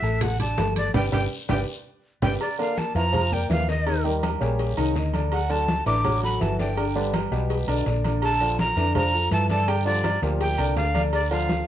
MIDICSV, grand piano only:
0, 0, Header, 1, 2, 480
1, 0, Start_track
1, 0, Tempo, 363857
1, 1244, Time_signature, 4, 2, 24, 8
1, 15395, End_track
2, 0, Start_track
2, 0, Title_t, "Grand piano"
2, 0, Program_c, 0, 0
2, 35, Note_on_c, 0, 57, 78
2, 39, Note_on_c, 0, 69, 79
2, 45, Note_on_c, 0, 81, 83
2, 432, Note_off_c, 0, 57, 0
2, 435, Note_off_c, 0, 69, 0
2, 438, Note_off_c, 0, 81, 0
2, 526, Note_on_c, 0, 62, 71
2, 528, Note_on_c, 0, 74, 77
2, 533, Note_on_c, 0, 86, 71
2, 722, Note_off_c, 0, 62, 0
2, 723, Note_off_c, 0, 74, 0
2, 726, Note_off_c, 0, 86, 0
2, 762, Note_on_c, 0, 57, 67
2, 768, Note_on_c, 0, 69, 65
2, 768, Note_on_c, 0, 81, 70
2, 1158, Note_off_c, 0, 57, 0
2, 1161, Note_off_c, 0, 69, 0
2, 1161, Note_off_c, 0, 81, 0
2, 1241, Note_on_c, 0, 74, 96
2, 1242, Note_on_c, 0, 67, 92
2, 1244, Note_on_c, 0, 71, 105
2, 1396, Note_off_c, 0, 74, 0
2, 1397, Note_off_c, 0, 67, 0
2, 1398, Note_off_c, 0, 71, 0
2, 1481, Note_on_c, 0, 67, 92
2, 1481, Note_on_c, 0, 71, 92
2, 1481, Note_on_c, 0, 74, 88
2, 1637, Note_off_c, 0, 67, 0
2, 1637, Note_off_c, 0, 71, 0
2, 1637, Note_off_c, 0, 74, 0
2, 1965, Note_on_c, 0, 67, 92
2, 1965, Note_on_c, 0, 71, 89
2, 1969, Note_on_c, 0, 74, 92
2, 2120, Note_off_c, 0, 67, 0
2, 2120, Note_off_c, 0, 71, 0
2, 2123, Note_off_c, 0, 74, 0
2, 2930, Note_on_c, 0, 74, 88
2, 2933, Note_on_c, 0, 67, 91
2, 2933, Note_on_c, 0, 71, 93
2, 3084, Note_off_c, 0, 74, 0
2, 3086, Note_off_c, 0, 67, 0
2, 3086, Note_off_c, 0, 71, 0
2, 3417, Note_on_c, 0, 58, 74
2, 3419, Note_on_c, 0, 70, 68
2, 3427, Note_on_c, 0, 74, 78
2, 3810, Note_off_c, 0, 58, 0
2, 3811, Note_off_c, 0, 70, 0
2, 3816, Note_off_c, 0, 74, 0
2, 3893, Note_on_c, 0, 53, 84
2, 3897, Note_on_c, 0, 65, 75
2, 3900, Note_on_c, 0, 77, 81
2, 4288, Note_off_c, 0, 53, 0
2, 4291, Note_off_c, 0, 65, 0
2, 4292, Note_off_c, 0, 77, 0
2, 4375, Note_on_c, 0, 58, 79
2, 4382, Note_on_c, 0, 70, 73
2, 4384, Note_on_c, 0, 74, 78
2, 4770, Note_off_c, 0, 58, 0
2, 4774, Note_off_c, 0, 70, 0
2, 4775, Note_off_c, 0, 74, 0
2, 4855, Note_on_c, 0, 51, 87
2, 4860, Note_on_c, 0, 63, 92
2, 4863, Note_on_c, 0, 75, 93
2, 5053, Note_off_c, 0, 51, 0
2, 5056, Note_off_c, 0, 63, 0
2, 5058, Note_off_c, 0, 75, 0
2, 5098, Note_on_c, 0, 51, 86
2, 5102, Note_on_c, 0, 63, 80
2, 5107, Note_on_c, 0, 75, 83
2, 5295, Note_off_c, 0, 51, 0
2, 5298, Note_off_c, 0, 63, 0
2, 5300, Note_off_c, 0, 75, 0
2, 5345, Note_on_c, 0, 55, 70
2, 5349, Note_on_c, 0, 67, 80
2, 5354, Note_on_c, 0, 70, 76
2, 5736, Note_off_c, 0, 55, 0
2, 5739, Note_off_c, 0, 67, 0
2, 5742, Note_off_c, 0, 70, 0
2, 5819, Note_on_c, 0, 55, 76
2, 5823, Note_on_c, 0, 67, 79
2, 5826, Note_on_c, 0, 70, 77
2, 6213, Note_off_c, 0, 55, 0
2, 6215, Note_off_c, 0, 67, 0
2, 6217, Note_off_c, 0, 70, 0
2, 6298, Note_on_c, 0, 51, 88
2, 6301, Note_on_c, 0, 63, 92
2, 6307, Note_on_c, 0, 75, 85
2, 6496, Note_off_c, 0, 51, 0
2, 6497, Note_off_c, 0, 63, 0
2, 6501, Note_off_c, 0, 75, 0
2, 6537, Note_on_c, 0, 51, 76
2, 6538, Note_on_c, 0, 63, 85
2, 6541, Note_on_c, 0, 75, 80
2, 6735, Note_off_c, 0, 51, 0
2, 6735, Note_off_c, 0, 63, 0
2, 6737, Note_off_c, 0, 75, 0
2, 6772, Note_on_c, 0, 50, 88
2, 6777, Note_on_c, 0, 62, 80
2, 6779, Note_on_c, 0, 74, 81
2, 7169, Note_off_c, 0, 50, 0
2, 7172, Note_off_c, 0, 62, 0
2, 7173, Note_off_c, 0, 74, 0
2, 7256, Note_on_c, 0, 54, 70
2, 7260, Note_on_c, 0, 66, 81
2, 7265, Note_on_c, 0, 69, 73
2, 7651, Note_off_c, 0, 54, 0
2, 7653, Note_off_c, 0, 66, 0
2, 7657, Note_off_c, 0, 69, 0
2, 7733, Note_on_c, 0, 50, 84
2, 7739, Note_on_c, 0, 62, 88
2, 7743, Note_on_c, 0, 74, 88
2, 8129, Note_off_c, 0, 50, 0
2, 8133, Note_off_c, 0, 62, 0
2, 8135, Note_off_c, 0, 74, 0
2, 8218, Note_on_c, 0, 54, 78
2, 8223, Note_on_c, 0, 66, 80
2, 8225, Note_on_c, 0, 69, 83
2, 8612, Note_off_c, 0, 54, 0
2, 8615, Note_off_c, 0, 66, 0
2, 8616, Note_off_c, 0, 69, 0
2, 8693, Note_on_c, 0, 50, 89
2, 8698, Note_on_c, 0, 62, 92
2, 8703, Note_on_c, 0, 74, 92
2, 8892, Note_off_c, 0, 50, 0
2, 8895, Note_off_c, 0, 62, 0
2, 8898, Note_off_c, 0, 74, 0
2, 8932, Note_on_c, 0, 50, 76
2, 8940, Note_on_c, 0, 62, 78
2, 8940, Note_on_c, 0, 74, 81
2, 9131, Note_off_c, 0, 50, 0
2, 9136, Note_off_c, 0, 62, 0
2, 9136, Note_off_c, 0, 74, 0
2, 9178, Note_on_c, 0, 55, 79
2, 9181, Note_on_c, 0, 67, 74
2, 9183, Note_on_c, 0, 71, 70
2, 9571, Note_off_c, 0, 55, 0
2, 9573, Note_off_c, 0, 67, 0
2, 9574, Note_off_c, 0, 71, 0
2, 9651, Note_on_c, 0, 55, 67
2, 9652, Note_on_c, 0, 67, 78
2, 9659, Note_on_c, 0, 71, 71
2, 10047, Note_off_c, 0, 55, 0
2, 10047, Note_off_c, 0, 67, 0
2, 10051, Note_off_c, 0, 71, 0
2, 10133, Note_on_c, 0, 50, 91
2, 10136, Note_on_c, 0, 62, 83
2, 10139, Note_on_c, 0, 74, 89
2, 10331, Note_off_c, 0, 50, 0
2, 10332, Note_off_c, 0, 62, 0
2, 10335, Note_off_c, 0, 74, 0
2, 10374, Note_on_c, 0, 50, 79
2, 10380, Note_on_c, 0, 62, 75
2, 10386, Note_on_c, 0, 74, 78
2, 10572, Note_off_c, 0, 50, 0
2, 10575, Note_off_c, 0, 62, 0
2, 10578, Note_off_c, 0, 74, 0
2, 10615, Note_on_c, 0, 50, 91
2, 10618, Note_on_c, 0, 62, 78
2, 10623, Note_on_c, 0, 74, 77
2, 11008, Note_off_c, 0, 50, 0
2, 11010, Note_off_c, 0, 62, 0
2, 11013, Note_off_c, 0, 74, 0
2, 11092, Note_on_c, 0, 53, 69
2, 11093, Note_on_c, 0, 65, 69
2, 11098, Note_on_c, 0, 69, 68
2, 11486, Note_off_c, 0, 53, 0
2, 11486, Note_off_c, 0, 65, 0
2, 11489, Note_off_c, 0, 69, 0
2, 11571, Note_on_c, 0, 50, 89
2, 11573, Note_on_c, 0, 62, 86
2, 11578, Note_on_c, 0, 74, 80
2, 11964, Note_off_c, 0, 50, 0
2, 11966, Note_off_c, 0, 62, 0
2, 11968, Note_off_c, 0, 74, 0
2, 12052, Note_on_c, 0, 53, 69
2, 12058, Note_on_c, 0, 65, 76
2, 12058, Note_on_c, 0, 69, 80
2, 12444, Note_off_c, 0, 53, 0
2, 12448, Note_off_c, 0, 65, 0
2, 12448, Note_off_c, 0, 69, 0
2, 12528, Note_on_c, 0, 50, 83
2, 12533, Note_on_c, 0, 62, 91
2, 12537, Note_on_c, 0, 74, 86
2, 12725, Note_off_c, 0, 50, 0
2, 12728, Note_off_c, 0, 62, 0
2, 12730, Note_off_c, 0, 74, 0
2, 12765, Note_on_c, 0, 50, 75
2, 12769, Note_on_c, 0, 62, 83
2, 12772, Note_on_c, 0, 74, 86
2, 12963, Note_off_c, 0, 50, 0
2, 12965, Note_off_c, 0, 62, 0
2, 12967, Note_off_c, 0, 74, 0
2, 13004, Note_on_c, 0, 53, 74
2, 13007, Note_on_c, 0, 65, 78
2, 13013, Note_on_c, 0, 67, 69
2, 13398, Note_off_c, 0, 53, 0
2, 13400, Note_off_c, 0, 65, 0
2, 13403, Note_off_c, 0, 67, 0
2, 13489, Note_on_c, 0, 53, 78
2, 13493, Note_on_c, 0, 65, 75
2, 13497, Note_on_c, 0, 67, 76
2, 13880, Note_off_c, 0, 53, 0
2, 13883, Note_off_c, 0, 65, 0
2, 13885, Note_off_c, 0, 67, 0
2, 13965, Note_on_c, 0, 50, 93
2, 13969, Note_on_c, 0, 62, 88
2, 13973, Note_on_c, 0, 74, 92
2, 14161, Note_off_c, 0, 50, 0
2, 14164, Note_off_c, 0, 62, 0
2, 14166, Note_off_c, 0, 74, 0
2, 14204, Note_on_c, 0, 50, 77
2, 14210, Note_on_c, 0, 62, 77
2, 14210, Note_on_c, 0, 74, 81
2, 14400, Note_off_c, 0, 50, 0
2, 14404, Note_off_c, 0, 62, 0
2, 14404, Note_off_c, 0, 74, 0
2, 14435, Note_on_c, 0, 50, 87
2, 14440, Note_on_c, 0, 62, 97
2, 14441, Note_on_c, 0, 74, 98
2, 14831, Note_off_c, 0, 50, 0
2, 14833, Note_off_c, 0, 62, 0
2, 14834, Note_off_c, 0, 74, 0
2, 14919, Note_on_c, 0, 53, 81
2, 14920, Note_on_c, 0, 65, 71
2, 14925, Note_on_c, 0, 69, 68
2, 15312, Note_off_c, 0, 53, 0
2, 15312, Note_off_c, 0, 65, 0
2, 15315, Note_off_c, 0, 69, 0
2, 15395, End_track
0, 0, End_of_file